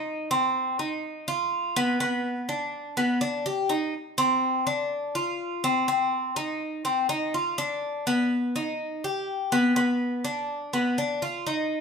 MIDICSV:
0, 0, Header, 1, 2, 480
1, 0, Start_track
1, 0, Key_signature, -3, "minor"
1, 0, Tempo, 485044
1, 65, Time_signature, 4, 2, 24, 8
1, 11683, End_track
2, 0, Start_track
2, 0, Title_t, "Cuban tres"
2, 0, Program_c, 0, 25
2, 0, Note_on_c, 0, 63, 73
2, 290, Note_off_c, 0, 63, 0
2, 305, Note_on_c, 0, 60, 80
2, 770, Note_off_c, 0, 60, 0
2, 784, Note_on_c, 0, 63, 59
2, 1250, Note_off_c, 0, 63, 0
2, 1265, Note_on_c, 0, 65, 75
2, 1730, Note_off_c, 0, 65, 0
2, 1746, Note_on_c, 0, 59, 90
2, 1971, Note_off_c, 0, 59, 0
2, 1983, Note_on_c, 0, 59, 77
2, 2449, Note_off_c, 0, 59, 0
2, 2462, Note_on_c, 0, 62, 65
2, 2928, Note_off_c, 0, 62, 0
2, 2940, Note_on_c, 0, 59, 68
2, 3174, Note_off_c, 0, 59, 0
2, 3178, Note_on_c, 0, 62, 66
2, 3413, Note_off_c, 0, 62, 0
2, 3423, Note_on_c, 0, 67, 64
2, 3655, Note_off_c, 0, 67, 0
2, 3656, Note_on_c, 0, 63, 72
2, 3892, Note_off_c, 0, 63, 0
2, 4136, Note_on_c, 0, 60, 83
2, 4605, Note_off_c, 0, 60, 0
2, 4618, Note_on_c, 0, 62, 65
2, 5086, Note_off_c, 0, 62, 0
2, 5097, Note_on_c, 0, 65, 64
2, 5565, Note_off_c, 0, 65, 0
2, 5580, Note_on_c, 0, 60, 75
2, 5808, Note_off_c, 0, 60, 0
2, 5820, Note_on_c, 0, 60, 69
2, 6286, Note_off_c, 0, 60, 0
2, 6297, Note_on_c, 0, 63, 70
2, 6765, Note_off_c, 0, 63, 0
2, 6777, Note_on_c, 0, 60, 65
2, 7012, Note_off_c, 0, 60, 0
2, 7018, Note_on_c, 0, 63, 72
2, 7253, Note_off_c, 0, 63, 0
2, 7267, Note_on_c, 0, 65, 59
2, 7498, Note_off_c, 0, 65, 0
2, 7502, Note_on_c, 0, 62, 78
2, 7968, Note_off_c, 0, 62, 0
2, 7985, Note_on_c, 0, 59, 81
2, 8450, Note_off_c, 0, 59, 0
2, 8468, Note_on_c, 0, 63, 60
2, 8931, Note_off_c, 0, 63, 0
2, 8949, Note_on_c, 0, 67, 64
2, 9412, Note_off_c, 0, 67, 0
2, 9422, Note_on_c, 0, 59, 84
2, 9649, Note_off_c, 0, 59, 0
2, 9661, Note_on_c, 0, 59, 77
2, 10129, Note_off_c, 0, 59, 0
2, 10138, Note_on_c, 0, 62, 69
2, 10608, Note_off_c, 0, 62, 0
2, 10623, Note_on_c, 0, 59, 67
2, 10857, Note_off_c, 0, 59, 0
2, 10867, Note_on_c, 0, 62, 61
2, 11099, Note_off_c, 0, 62, 0
2, 11105, Note_on_c, 0, 65, 58
2, 11339, Note_off_c, 0, 65, 0
2, 11346, Note_on_c, 0, 63, 65
2, 11683, Note_off_c, 0, 63, 0
2, 11683, End_track
0, 0, End_of_file